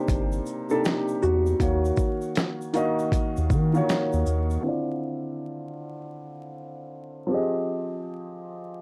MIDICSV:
0, 0, Header, 1, 5, 480
1, 0, Start_track
1, 0, Tempo, 759494
1, 1011, Time_signature, 4, 2, 24, 8
1, 5572, End_track
2, 0, Start_track
2, 0, Title_t, "Hollow-body jazz guitar"
2, 0, Program_c, 0, 26
2, 0, Note_on_c, 0, 67, 93
2, 447, Note_off_c, 0, 67, 0
2, 450, Note_on_c, 0, 69, 91
2, 536, Note_off_c, 0, 69, 0
2, 536, Note_on_c, 0, 67, 89
2, 774, Note_on_c, 0, 66, 80
2, 781, Note_off_c, 0, 67, 0
2, 2428, Note_off_c, 0, 66, 0
2, 5572, End_track
3, 0, Start_track
3, 0, Title_t, "Upright piano"
3, 0, Program_c, 1, 0
3, 0, Control_c, 1, 64, 127
3, 0, Note_on_c, 1, 48, 73
3, 0, Note_on_c, 1, 58, 64
3, 0, Note_on_c, 1, 62, 66
3, 0, Note_on_c, 1, 63, 69
3, 0, Note_on_c, 1, 72, 79
3, 205, Note_off_c, 1, 48, 0
3, 208, Note_off_c, 1, 58, 0
3, 210, Note_off_c, 1, 62, 0
3, 214, Note_off_c, 1, 63, 0
3, 217, Note_off_c, 1, 72, 0
3, 441, Note_on_c, 1, 48, 67
3, 446, Note_on_c, 1, 58, 63
3, 451, Note_on_c, 1, 62, 64
3, 455, Note_on_c, 1, 63, 67
3, 462, Note_on_c, 1, 67, 77
3, 772, Note_off_c, 1, 48, 0
3, 774, Note_off_c, 1, 58, 0
3, 777, Note_off_c, 1, 62, 0
3, 779, Note_off_c, 1, 63, 0
3, 783, Note_off_c, 1, 67, 0
3, 1005, Note_on_c, 1, 51, 66
3, 1010, Note_on_c, 1, 58, 64
3, 1017, Note_on_c, 1, 77, 63
3, 1020, Control_c, 1, 64, 0
3, 1021, Note_on_c, 1, 66, 65
3, 1027, Note_on_c, 1, 73, 75
3, 1131, Control_c, 1, 64, 127
3, 1457, Note_off_c, 1, 51, 0
3, 1459, Note_off_c, 1, 58, 0
3, 1463, Note_off_c, 1, 77, 0
3, 1465, Note_off_c, 1, 66, 0
3, 1468, Note_off_c, 1, 73, 0
3, 1726, Note_on_c, 1, 51, 83
3, 1731, Note_on_c, 1, 58, 78
3, 1737, Note_on_c, 1, 77, 77
3, 1744, Note_on_c, 1, 66, 75
3, 1749, Note_on_c, 1, 75, 95
3, 2126, Note_off_c, 1, 51, 0
3, 2129, Note_off_c, 1, 58, 0
3, 2132, Note_off_c, 1, 77, 0
3, 2135, Note_off_c, 1, 66, 0
3, 2138, Note_off_c, 1, 75, 0
3, 2360, Note_on_c, 1, 51, 79
3, 2366, Note_on_c, 1, 58, 73
3, 2371, Note_on_c, 1, 65, 72
3, 2378, Note_on_c, 1, 66, 70
3, 2382, Note_on_c, 1, 73, 84
3, 2692, Note_off_c, 1, 51, 0
3, 2694, Note_off_c, 1, 58, 0
3, 2697, Note_off_c, 1, 65, 0
3, 2700, Note_off_c, 1, 66, 0
3, 2703, Note_off_c, 1, 73, 0
3, 2914, Note_on_c, 1, 50, 63
3, 2925, Note_on_c, 1, 60, 61
3, 2937, Note_on_c, 1, 64, 62
3, 2938, Control_c, 1, 64, 0
3, 2949, Note_on_c, 1, 65, 62
3, 2959, Note_on_c, 1, 74, 72
3, 3038, Control_c, 1, 64, 127
3, 4578, Note_off_c, 1, 50, 0
3, 4583, Note_off_c, 1, 60, 0
3, 4589, Note_off_c, 1, 64, 0
3, 4592, Note_on_c, 1, 53, 64
3, 4595, Note_off_c, 1, 65, 0
3, 4600, Note_off_c, 1, 74, 0
3, 4602, Note_on_c, 1, 60, 57
3, 4614, Note_on_c, 1, 67, 61
3, 4618, Control_c, 1, 64, 0
3, 4625, Note_on_c, 1, 68, 60
3, 4639, Note_on_c, 1, 75, 73
3, 4731, Control_c, 1, 64, 127
3, 5572, Note_off_c, 1, 53, 0
3, 5572, Note_off_c, 1, 60, 0
3, 5572, Note_off_c, 1, 67, 0
3, 5572, Note_off_c, 1, 68, 0
3, 5572, Note_off_c, 1, 75, 0
3, 5572, End_track
4, 0, Start_track
4, 0, Title_t, "Sub bass"
4, 0, Program_c, 2, 38
4, 58, Note_on_c, 2, 31, 96
4, 255, Note_off_c, 2, 31, 0
4, 780, Note_on_c, 2, 40, 96
4, 977, Note_off_c, 2, 40, 0
4, 1015, Note_on_c, 2, 39, 102
4, 1213, Note_off_c, 2, 39, 0
4, 2135, Note_on_c, 2, 39, 83
4, 2216, Note_on_c, 2, 51, 94
4, 2225, Note_off_c, 2, 39, 0
4, 2414, Note_off_c, 2, 51, 0
4, 2614, Note_on_c, 2, 39, 90
4, 2682, Note_off_c, 2, 39, 0
4, 2697, Note_on_c, 2, 39, 84
4, 2895, Note_off_c, 2, 39, 0
4, 5572, End_track
5, 0, Start_track
5, 0, Title_t, "Drums"
5, 52, Note_on_c, 9, 82, 63
5, 53, Note_on_c, 9, 36, 98
5, 60, Note_on_c, 9, 42, 84
5, 115, Note_off_c, 9, 82, 0
5, 116, Note_off_c, 9, 36, 0
5, 123, Note_off_c, 9, 42, 0
5, 203, Note_on_c, 9, 82, 46
5, 266, Note_off_c, 9, 82, 0
5, 290, Note_on_c, 9, 82, 47
5, 294, Note_off_c, 9, 82, 0
5, 294, Note_on_c, 9, 82, 47
5, 358, Note_off_c, 9, 82, 0
5, 439, Note_on_c, 9, 82, 46
5, 502, Note_off_c, 9, 82, 0
5, 534, Note_on_c, 9, 82, 67
5, 540, Note_on_c, 9, 42, 62
5, 544, Note_on_c, 9, 38, 114
5, 598, Note_off_c, 9, 82, 0
5, 603, Note_off_c, 9, 42, 0
5, 607, Note_off_c, 9, 38, 0
5, 684, Note_on_c, 9, 82, 50
5, 747, Note_off_c, 9, 82, 0
5, 775, Note_on_c, 9, 82, 49
5, 838, Note_off_c, 9, 82, 0
5, 924, Note_on_c, 9, 82, 45
5, 987, Note_off_c, 9, 82, 0
5, 1010, Note_on_c, 9, 36, 98
5, 1013, Note_on_c, 9, 42, 80
5, 1016, Note_on_c, 9, 82, 68
5, 1074, Note_off_c, 9, 36, 0
5, 1076, Note_off_c, 9, 42, 0
5, 1079, Note_off_c, 9, 82, 0
5, 1169, Note_on_c, 9, 82, 48
5, 1232, Note_off_c, 9, 82, 0
5, 1241, Note_on_c, 9, 82, 41
5, 1248, Note_on_c, 9, 36, 90
5, 1252, Note_off_c, 9, 82, 0
5, 1252, Note_on_c, 9, 82, 53
5, 1311, Note_off_c, 9, 36, 0
5, 1315, Note_off_c, 9, 82, 0
5, 1400, Note_on_c, 9, 82, 47
5, 1463, Note_off_c, 9, 82, 0
5, 1488, Note_on_c, 9, 42, 65
5, 1495, Note_on_c, 9, 82, 62
5, 1500, Note_on_c, 9, 38, 116
5, 1551, Note_off_c, 9, 42, 0
5, 1558, Note_off_c, 9, 82, 0
5, 1563, Note_off_c, 9, 38, 0
5, 1652, Note_on_c, 9, 82, 44
5, 1716, Note_off_c, 9, 82, 0
5, 1730, Note_on_c, 9, 42, 49
5, 1730, Note_on_c, 9, 82, 49
5, 1745, Note_off_c, 9, 82, 0
5, 1745, Note_on_c, 9, 82, 43
5, 1793, Note_off_c, 9, 42, 0
5, 1808, Note_off_c, 9, 82, 0
5, 1889, Note_on_c, 9, 82, 47
5, 1952, Note_off_c, 9, 82, 0
5, 1971, Note_on_c, 9, 36, 103
5, 1977, Note_on_c, 9, 42, 80
5, 1978, Note_on_c, 9, 82, 62
5, 2035, Note_off_c, 9, 36, 0
5, 2040, Note_off_c, 9, 42, 0
5, 2042, Note_off_c, 9, 82, 0
5, 2128, Note_on_c, 9, 82, 45
5, 2191, Note_off_c, 9, 82, 0
5, 2212, Note_on_c, 9, 36, 90
5, 2212, Note_on_c, 9, 82, 49
5, 2216, Note_off_c, 9, 82, 0
5, 2216, Note_on_c, 9, 82, 48
5, 2276, Note_off_c, 9, 36, 0
5, 2279, Note_off_c, 9, 82, 0
5, 2367, Note_on_c, 9, 82, 48
5, 2430, Note_off_c, 9, 82, 0
5, 2460, Note_on_c, 9, 42, 65
5, 2463, Note_on_c, 9, 82, 67
5, 2464, Note_on_c, 9, 38, 111
5, 2523, Note_off_c, 9, 42, 0
5, 2526, Note_off_c, 9, 82, 0
5, 2527, Note_off_c, 9, 38, 0
5, 2608, Note_on_c, 9, 82, 51
5, 2671, Note_off_c, 9, 82, 0
5, 2693, Note_on_c, 9, 82, 52
5, 2695, Note_off_c, 9, 82, 0
5, 2695, Note_on_c, 9, 82, 48
5, 2758, Note_off_c, 9, 82, 0
5, 2846, Note_on_c, 9, 82, 47
5, 2909, Note_off_c, 9, 82, 0
5, 5572, End_track
0, 0, End_of_file